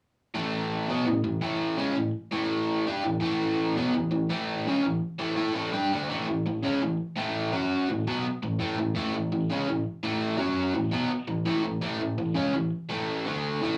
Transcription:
0.35 overdriven electric guitar A2 E3 A3
0.89 overdriven electric guitar B2 F#3 B3
1.06 overdriven electric guitar A2 E3
1.24 overdriven electric guitar A2 E3
1.41 overdriven electric guitar A2 E3 A3
1.78 overdriven electric guitar C#3 G#3 C#4
1.94 overdriven electric guitar A2 E3
2.31 overdriven electric guitar A2 E3 A3
2.87 overdriven electric guitar G3 D4 G4
3.04 overdriven electric guitar A2 E3
3.20 overdriven electric guitar A2 E3 A3
3.76 overdriven electric guitar B2 F#3 B3
3.94 overdriven electric guitar A2 E3
4.11 overdriven electric guitar A2 E3
4.29 overdriven electric guitar A2 E3 A3
4.67 overdriven electric guitar C#3 G#3 C#4
4.83 overdriven electric guitar A2 E3
5.19 overdriven electric guitar A2 E3 A3
5.36 overdriven electric guitar A3 E4 A4
5.55 overdriven electric guitar A2 E3 A3
5.73 overdriven electric guitar G3 D4 G4
5.93 overdriven electric guitar D3 A3 D4
6.09 overdriven electric guitar A2 E3 A3
6.27 overdriven electric guitar A2 E3
6.46 overdriven electric guitar A2 E3
6.63 overdriven electric guitar C#3 G#3 C#4
6.83 overdriven electric guitar A2 E3
7.16 overdriven electric guitar A2 E3 A3
7.52 overdriven electric guitar F#3 C#4 F#4
7.89 overdriven electric guitar A2 E3
8.07 overdriven electric guitar B2 F#3 B3
8.24 muted overdriven electric guitar stroke
8.43 overdriven electric guitar A2 E3
8.59 overdriven electric guitar A2 E3 A3
8.77 overdriven electric guitar A2 E3
8.95 overdriven electric guitar A2 E3 A3
9.14 overdriven electric guitar A2 E3
9.32 overdriven electric guitar A2 E3
9.50 overdriven electric guitar C#3 G#3 C#4
9.68 overdriven electric guitar A2 E3
10.03 overdriven electric guitar A2 E3 A3
10.38 overdriven electric guitar F#3 C#4 F#4
10.74 overdriven electric guitar A2 E3
10.91 overdriven electric guitar B2 F#3 B3
11.11 muted overdriven electric guitar stroke
11.28 overdriven electric guitar A2 E3
11.45 overdriven electric guitar A2 E3 A3
11.64 overdriven electric guitar A2 E3
11.81 overdriven electric guitar A2 E3 A3
11.99 overdriven electric guitar A2 E3
12.18 overdriven electric guitar A2 E3
12.34 overdriven electric guitar C#3 G#3 C#4
12.54 overdriven electric guitar A2 E3
12.89 overdriven electric guitar A2 E3 A3
13.26 overdriven electric guitar D3 A3 D4
13.62 overdriven electric guitar A2 E3 A3

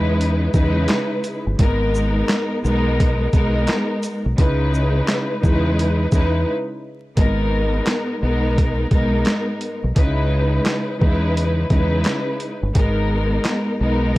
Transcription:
Already playing: fingered electric bass E2, string section C#3 G#3 D#4 E4 B4
0.21 closed hi-hat
0.54 fingered electric bass E2, string section C#3 G#3 D#4 E4 B4, kick, closed hi-hat, shaker
0.88 snare, clap, closed hi-hat
1.24 closed hi-hat, shaker
1.47 fingered electric bass G1
1.58 fingered electric bass G#1, string section G#2 G#3 B3 D#4 A#4, kick, closed hi-hat
1.95 shaker
2.29 snare, clap, closed hi-hat
2.63 fingered electric bass B1, string section G#2 G#3 B3 D#4 A#4, shaker
3.00 kick, closed hi-hat
3.32 fingered electric bass B1, string section G#2 G#3 B3 D#4 A#4, kick, closed hi-hat, shaker
3.67 snare, clap, closed hi-hat
4.03 closed hi-hat, shaker
4.26 fingered electric bass B1
4.37 fingered electric bass C#2, string section C#3 G#3 D#4 E4 B4, kick, closed hi-hat
4.74 shaker
5.08 snare, clap, closed hi-hat
5.41 fingered electric bass E2, string section C#3 G#3 D#4 E4 B4, kick, shaker
5.79 closed hi-hat
6.12 fingered electric bass E2, string section C#3 G#3 D#4 E4 B4, kick, closed hi-hat, shaker
7.16 fingered electric bass G#1, string section G#2 G#3 B3 D#4 A#4, kick, closed hi-hat
7.87 snare, clap, closed hi-hat
8.21 fingered electric bass B1, string section G#2 G#3 B3 D#4 A#4
8.58 kick, closed hi-hat
8.90 fingered electric bass B1, string section G#2 G#3 B3 D#4 A#4, kick, closed hi-hat
9.25 snare, clap, closed hi-hat
9.61 closed hi-hat
9.84 fingered electric bass B1
9.95 fingered electric bass C#2, string section C#3 G#3 D#4 E4 B4, kick, closed hi-hat
10.66 snare, clap, closed hi-hat
10.98 fingered electric bass E2, string section C#3 G#3 D#4 E4 B4, kick
11.37 closed hi-hat
11.70 fingered electric bass E2, string section C#3 G#3 D#4 E4 B4, kick, closed hi-hat
12.04 snare, clap, closed hi-hat
12.40 closed hi-hat
12.63 fingered electric bass G1
12.74 fingered electric bass G#1, string section G#2 G#3 B3 D#4 A#4, kick, closed hi-hat
13.45 snare, clap, closed hi-hat
13.79 fingered electric bass B1, string section G#2 G#3 B3 D#4 A#4

